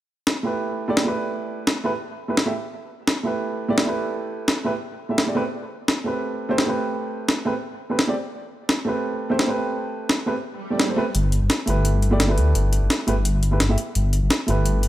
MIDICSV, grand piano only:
0, 0, Header, 1, 2, 480
1, 0, Start_track
1, 0, Key_signature, 1, "major"
1, 0, Tempo, 350877
1, 1808, Time_signature, 4, 2, 24, 8
1, 20357, End_track
2, 0, Start_track
2, 0, Title_t, "Grand piano"
2, 0, Program_c, 0, 0
2, 586, Note_on_c, 0, 57, 76
2, 603, Note_on_c, 0, 64, 72
2, 618, Note_on_c, 0, 67, 72
2, 635, Note_on_c, 0, 71, 85
2, 1173, Note_off_c, 0, 57, 0
2, 1182, Note_off_c, 0, 64, 0
2, 1189, Note_off_c, 0, 67, 0
2, 1198, Note_off_c, 0, 71, 0
2, 1202, Note_on_c, 0, 57, 89
2, 1211, Note_on_c, 0, 64, 80
2, 1219, Note_on_c, 0, 67, 78
2, 1228, Note_on_c, 0, 74, 98
2, 1407, Note_off_c, 0, 57, 0
2, 1422, Note_off_c, 0, 64, 0
2, 1426, Note_off_c, 0, 67, 0
2, 1427, Note_on_c, 0, 57, 81
2, 1431, Note_off_c, 0, 74, 0
2, 1444, Note_on_c, 0, 64, 72
2, 1461, Note_on_c, 0, 67, 73
2, 1477, Note_on_c, 0, 71, 90
2, 2488, Note_off_c, 0, 57, 0
2, 2496, Note_off_c, 0, 64, 0
2, 2504, Note_off_c, 0, 67, 0
2, 2512, Note_off_c, 0, 71, 0
2, 2513, Note_on_c, 0, 57, 85
2, 2522, Note_on_c, 0, 64, 77
2, 2530, Note_on_c, 0, 67, 78
2, 2538, Note_on_c, 0, 71, 94
2, 2599, Note_off_c, 0, 57, 0
2, 2603, Note_off_c, 0, 64, 0
2, 2607, Note_off_c, 0, 67, 0
2, 2611, Note_off_c, 0, 71, 0
2, 3121, Note_on_c, 0, 57, 74
2, 3129, Note_on_c, 0, 64, 65
2, 3136, Note_on_c, 0, 67, 67
2, 3145, Note_on_c, 0, 71, 81
2, 3198, Note_off_c, 0, 57, 0
2, 3202, Note_off_c, 0, 64, 0
2, 3206, Note_off_c, 0, 67, 0
2, 3210, Note_off_c, 0, 71, 0
2, 3357, Note_on_c, 0, 57, 85
2, 3366, Note_on_c, 0, 64, 77
2, 3374, Note_on_c, 0, 67, 78
2, 3381, Note_on_c, 0, 76, 93
2, 3436, Note_off_c, 0, 57, 0
2, 3441, Note_off_c, 0, 64, 0
2, 3445, Note_off_c, 0, 67, 0
2, 3448, Note_off_c, 0, 76, 0
2, 4422, Note_on_c, 0, 57, 79
2, 4439, Note_on_c, 0, 64, 70
2, 4457, Note_on_c, 0, 67, 71
2, 4471, Note_on_c, 0, 71, 86
2, 5011, Note_off_c, 0, 57, 0
2, 5020, Note_off_c, 0, 64, 0
2, 5028, Note_off_c, 0, 67, 0
2, 5036, Note_off_c, 0, 71, 0
2, 5040, Note_on_c, 0, 57, 89
2, 5048, Note_on_c, 0, 64, 81
2, 5056, Note_on_c, 0, 67, 83
2, 5064, Note_on_c, 0, 74, 97
2, 5245, Note_off_c, 0, 57, 0
2, 5261, Note_off_c, 0, 64, 0
2, 5265, Note_off_c, 0, 67, 0
2, 5266, Note_on_c, 0, 57, 80
2, 5269, Note_off_c, 0, 74, 0
2, 5283, Note_on_c, 0, 64, 75
2, 5300, Note_on_c, 0, 67, 76
2, 5316, Note_on_c, 0, 71, 89
2, 6327, Note_off_c, 0, 57, 0
2, 6335, Note_off_c, 0, 64, 0
2, 6344, Note_off_c, 0, 67, 0
2, 6352, Note_off_c, 0, 71, 0
2, 6352, Note_on_c, 0, 57, 85
2, 6361, Note_on_c, 0, 64, 80
2, 6370, Note_on_c, 0, 67, 80
2, 6376, Note_on_c, 0, 71, 96
2, 6438, Note_off_c, 0, 57, 0
2, 6443, Note_off_c, 0, 64, 0
2, 6447, Note_off_c, 0, 67, 0
2, 6450, Note_off_c, 0, 71, 0
2, 6962, Note_on_c, 0, 57, 71
2, 6971, Note_on_c, 0, 64, 63
2, 6979, Note_on_c, 0, 67, 64
2, 6988, Note_on_c, 0, 76, 77
2, 7178, Note_off_c, 0, 57, 0
2, 7183, Note_off_c, 0, 64, 0
2, 7186, Note_off_c, 0, 67, 0
2, 7191, Note_off_c, 0, 76, 0
2, 7202, Note_on_c, 0, 57, 68
2, 7211, Note_on_c, 0, 64, 64
2, 7219, Note_on_c, 0, 67, 64
2, 7228, Note_on_c, 0, 74, 77
2, 7294, Note_off_c, 0, 57, 0
2, 7300, Note_off_c, 0, 64, 0
2, 7303, Note_off_c, 0, 67, 0
2, 7308, Note_off_c, 0, 74, 0
2, 7315, Note_on_c, 0, 57, 93
2, 7324, Note_on_c, 0, 60, 85
2, 7332, Note_on_c, 0, 67, 86
2, 7340, Note_on_c, 0, 71, 102
2, 7400, Note_off_c, 0, 57, 0
2, 7404, Note_off_c, 0, 60, 0
2, 7408, Note_off_c, 0, 67, 0
2, 7412, Note_off_c, 0, 71, 0
2, 8262, Note_on_c, 0, 57, 77
2, 8278, Note_on_c, 0, 60, 71
2, 8292, Note_on_c, 0, 67, 70
2, 8310, Note_on_c, 0, 71, 87
2, 8851, Note_off_c, 0, 57, 0
2, 8859, Note_off_c, 0, 60, 0
2, 8866, Note_off_c, 0, 67, 0
2, 8875, Note_off_c, 0, 71, 0
2, 8877, Note_on_c, 0, 57, 88
2, 8886, Note_on_c, 0, 60, 82
2, 8893, Note_on_c, 0, 67, 81
2, 8903, Note_on_c, 0, 72, 101
2, 9086, Note_off_c, 0, 57, 0
2, 9100, Note_off_c, 0, 60, 0
2, 9103, Note_off_c, 0, 67, 0
2, 9107, Note_on_c, 0, 57, 81
2, 9109, Note_off_c, 0, 72, 0
2, 9123, Note_on_c, 0, 60, 73
2, 9139, Note_on_c, 0, 67, 74
2, 9155, Note_on_c, 0, 71, 86
2, 10167, Note_off_c, 0, 57, 0
2, 10175, Note_off_c, 0, 60, 0
2, 10184, Note_off_c, 0, 67, 0
2, 10191, Note_off_c, 0, 71, 0
2, 10193, Note_on_c, 0, 57, 85
2, 10202, Note_on_c, 0, 60, 80
2, 10210, Note_on_c, 0, 67, 77
2, 10218, Note_on_c, 0, 71, 96
2, 10279, Note_off_c, 0, 57, 0
2, 10283, Note_off_c, 0, 60, 0
2, 10287, Note_off_c, 0, 67, 0
2, 10291, Note_off_c, 0, 71, 0
2, 10800, Note_on_c, 0, 57, 74
2, 10808, Note_on_c, 0, 60, 66
2, 10815, Note_on_c, 0, 67, 67
2, 10824, Note_on_c, 0, 71, 80
2, 10878, Note_off_c, 0, 57, 0
2, 10882, Note_off_c, 0, 60, 0
2, 10885, Note_off_c, 0, 67, 0
2, 10890, Note_off_c, 0, 71, 0
2, 11040, Note_on_c, 0, 57, 82
2, 11048, Note_on_c, 0, 60, 79
2, 11058, Note_on_c, 0, 67, 78
2, 11066, Note_on_c, 0, 74, 95
2, 11118, Note_off_c, 0, 57, 0
2, 11122, Note_off_c, 0, 60, 0
2, 11127, Note_off_c, 0, 67, 0
2, 11131, Note_off_c, 0, 74, 0
2, 12101, Note_on_c, 0, 57, 81
2, 12117, Note_on_c, 0, 60, 73
2, 12134, Note_on_c, 0, 67, 73
2, 12151, Note_on_c, 0, 71, 87
2, 12691, Note_off_c, 0, 57, 0
2, 12699, Note_off_c, 0, 60, 0
2, 12707, Note_off_c, 0, 67, 0
2, 12716, Note_off_c, 0, 71, 0
2, 12719, Note_on_c, 0, 57, 88
2, 12727, Note_on_c, 0, 60, 79
2, 12735, Note_on_c, 0, 67, 81
2, 12743, Note_on_c, 0, 72, 99
2, 12930, Note_off_c, 0, 57, 0
2, 12940, Note_off_c, 0, 60, 0
2, 12944, Note_off_c, 0, 67, 0
2, 12948, Note_off_c, 0, 72, 0
2, 12950, Note_on_c, 0, 57, 78
2, 12966, Note_on_c, 0, 60, 74
2, 12982, Note_on_c, 0, 67, 73
2, 12998, Note_on_c, 0, 71, 90
2, 14009, Note_off_c, 0, 57, 0
2, 14017, Note_off_c, 0, 60, 0
2, 14025, Note_off_c, 0, 67, 0
2, 14033, Note_off_c, 0, 71, 0
2, 14036, Note_on_c, 0, 57, 86
2, 14043, Note_on_c, 0, 60, 79
2, 14052, Note_on_c, 0, 67, 82
2, 14059, Note_on_c, 0, 71, 92
2, 14120, Note_off_c, 0, 57, 0
2, 14124, Note_off_c, 0, 60, 0
2, 14128, Note_off_c, 0, 67, 0
2, 14132, Note_off_c, 0, 71, 0
2, 14641, Note_on_c, 0, 57, 68
2, 14649, Note_on_c, 0, 60, 64
2, 14656, Note_on_c, 0, 67, 64
2, 14666, Note_on_c, 0, 74, 75
2, 14857, Note_off_c, 0, 57, 0
2, 14862, Note_off_c, 0, 60, 0
2, 14865, Note_off_c, 0, 67, 0
2, 14870, Note_off_c, 0, 74, 0
2, 14885, Note_on_c, 0, 57, 69
2, 14891, Note_on_c, 0, 60, 65
2, 14901, Note_on_c, 0, 67, 66
2, 14909, Note_on_c, 0, 72, 77
2, 14976, Note_off_c, 0, 57, 0
2, 14979, Note_off_c, 0, 60, 0
2, 14984, Note_off_c, 0, 67, 0
2, 14988, Note_off_c, 0, 72, 0
2, 14997, Note_on_c, 0, 57, 96
2, 15004, Note_on_c, 0, 60, 86
2, 15015, Note_on_c, 0, 67, 86
2, 15021, Note_on_c, 0, 71, 104
2, 15081, Note_off_c, 0, 57, 0
2, 15084, Note_off_c, 0, 60, 0
2, 15089, Note_off_c, 0, 67, 0
2, 15093, Note_off_c, 0, 71, 0
2, 15947, Note_on_c, 0, 57, 79
2, 15965, Note_on_c, 0, 64, 73
2, 15979, Note_on_c, 0, 67, 74
2, 15998, Note_on_c, 0, 71, 89
2, 16534, Note_off_c, 0, 57, 0
2, 16542, Note_off_c, 0, 64, 0
2, 16550, Note_off_c, 0, 67, 0
2, 16559, Note_off_c, 0, 71, 0
2, 16563, Note_on_c, 0, 57, 90
2, 16572, Note_on_c, 0, 64, 81
2, 16581, Note_on_c, 0, 67, 82
2, 16589, Note_on_c, 0, 74, 97
2, 16769, Note_off_c, 0, 57, 0
2, 16783, Note_off_c, 0, 64, 0
2, 16787, Note_off_c, 0, 67, 0
2, 16789, Note_on_c, 0, 57, 83
2, 16792, Note_off_c, 0, 74, 0
2, 16805, Note_on_c, 0, 64, 75
2, 16823, Note_on_c, 0, 67, 76
2, 16838, Note_on_c, 0, 71, 90
2, 17848, Note_off_c, 0, 57, 0
2, 17857, Note_off_c, 0, 64, 0
2, 17865, Note_off_c, 0, 67, 0
2, 17873, Note_off_c, 0, 71, 0
2, 17876, Note_on_c, 0, 57, 88
2, 17884, Note_on_c, 0, 64, 77
2, 17893, Note_on_c, 0, 67, 80
2, 17900, Note_on_c, 0, 71, 96
2, 17960, Note_off_c, 0, 57, 0
2, 17964, Note_off_c, 0, 64, 0
2, 17969, Note_off_c, 0, 67, 0
2, 17972, Note_off_c, 0, 71, 0
2, 18483, Note_on_c, 0, 57, 74
2, 18492, Note_on_c, 0, 64, 67
2, 18499, Note_on_c, 0, 67, 68
2, 18507, Note_on_c, 0, 71, 84
2, 18559, Note_off_c, 0, 57, 0
2, 18563, Note_off_c, 0, 64, 0
2, 18567, Note_off_c, 0, 67, 0
2, 18571, Note_off_c, 0, 71, 0
2, 18723, Note_on_c, 0, 57, 84
2, 18732, Note_on_c, 0, 64, 79
2, 18740, Note_on_c, 0, 67, 77
2, 18748, Note_on_c, 0, 76, 94
2, 18799, Note_off_c, 0, 57, 0
2, 18804, Note_off_c, 0, 64, 0
2, 18808, Note_off_c, 0, 67, 0
2, 18812, Note_off_c, 0, 76, 0
2, 19787, Note_on_c, 0, 57, 78
2, 19803, Note_on_c, 0, 64, 73
2, 19820, Note_on_c, 0, 67, 73
2, 19837, Note_on_c, 0, 71, 85
2, 20357, Note_off_c, 0, 57, 0
2, 20357, Note_off_c, 0, 64, 0
2, 20357, Note_off_c, 0, 67, 0
2, 20357, Note_off_c, 0, 71, 0
2, 20357, End_track
0, 0, End_of_file